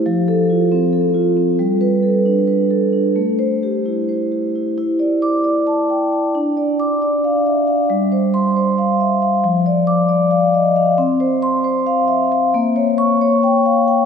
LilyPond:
\new Staff \with { instrumentName = "Vibraphone" } { \time 7/8 \key e \phrygian \tempo 4 = 135 << { r8 a'4 r2 | r8 b'4 r2 | r8 c''4 r2 | r4 d'''4 r4. |
r4 d'''4 r4. | r4 c'''4 r4. | r4 d'''4 r4. | r4 c'''4 r4. |
r4 des'''4 r4. | } \\ { f4 f'8 c'8 a'8 f'8 c'8 | g4 a'8 d'8 b'8 a'8 d'8 | a4 g'8 e'8 c''8 g'8 e'8 | e'8 d''4 d''8 a''8 g''8 a''8 |
d'8 d''4 d''8 f''8 e''8 f''8 | g8 c''4 c''8 f''8 e''8 f''8 | f8 d''4 d''8 f''8 dis''8 f''8 | c'8 c''4 c''8 f''8 e''8 f''8 |
bes8 des''4 des''8 g''8 f''8 g''8 | } >> }